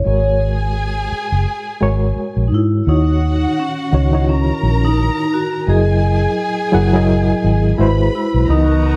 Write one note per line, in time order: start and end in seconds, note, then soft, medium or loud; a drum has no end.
0.00 0.38 C#5 loud
0.05 1.08 G#1 loud
0.05 0.95 G#3 medium
0.05 0.95 F#4 medium
0.05 2.48 G#4 medium
0.05 0.96 A#4 medium
0.05 0.96 C#5 medium
0.05 2.48 G#5 loud
1.12 muted fingered electric bass stroke soft
1.32 1.44 F#1 medium
1.81 2.11 G#1 medium
1.81 2.47 G#3 medium
1.81 2.47 F#4 medium
1.81 2.48 A#4 medium
1.81 2.48 C#5 loud
2.16 muted fingered electric bass stroke soft
2.37 2.49 A#1 medium
2.48 2.81 G#2 medium
2.48 2.53 D#4 medium
2.54 2.89 E4 medium
2.87 3.45 D#2 loud
2.87 3.53 D#3 medium
2.87 3.53 D#4 medium
2.87 3.61 D#4 medium
2.87 4.25 F#4 medium
2.87 3.54 F#4 medium
2.87 3.54 C#5 medium
2.87 4.25 F#5 loud
3.60 4.28 C#4 loud
3.92 4.50 C#2 medium
3.92 4.05 D#3 medium
3.92 4.05 D#4 medium
3.92 4.06 F#4 medium
3.92 4.06 C#5 medium
4.12 4.97 D#3 medium
4.12 4.97 D#4 medium
4.12 4.19 E4 medium
4.12 4.98 C#5 medium
4.21 5.01 F#4 medium
4.28 4.86 C#4 medium
4.28 5.65 A#4 medium
4.28 5.65 A#5 loud
4.63 5.09 A#1 medium
4.85 5.35 D#4 loud
5.34 5.70 F#4 medium
5.67 6.26 F#1 loud
5.67 6.33 F#3 medium
5.67 6.34 E4 medium
5.67 6.34 G#4 medium
5.67 7.75 G#4 loud
5.67 8.10 G#4 loud
5.67 6.34 A#4 medium
5.67 6.34 D#5 medium
5.67 7.75 G#5 loud
6.72 7.31 F#1 loud
6.72 6.85 F#3 medium
6.72 6.86 E4 medium
6.72 6.86 G#4 medium
6.72 6.86 A#4 medium
6.72 6.86 F#5 loud
6.93 7.77 F#3 medium
6.93 7.77 E4 medium
6.93 7.78 G#4 medium
6.93 7.78 A#4 medium
6.93 7.79 D#5 loud
7.44 7.73 G#1 loud
7.78 8.08 G#1 medium
7.78 8.37 G#3 medium
7.78 8.37 E4 medium
7.78 8.37 F#4 medium
7.78 8.48 B4 medium
7.78 8.38 B4 medium
7.78 8.38 C5 loud
7.78 8.48 B5 medium
8.15 8.47 E4 medium
8.34 8.46 B1 medium
8.48 8.96 C#2 loud
8.48 8.96 C#3 medium
8.48 8.96 E3 medium
8.48 8.96 B3 medium
8.48 8.96 D#4 medium
8.48 8.96 D#4 loud
8.48 8.96 F#4 medium
8.48 8.96 A#4 loud
8.48 8.96 D#5 medium
8.48 8.96 A#5 medium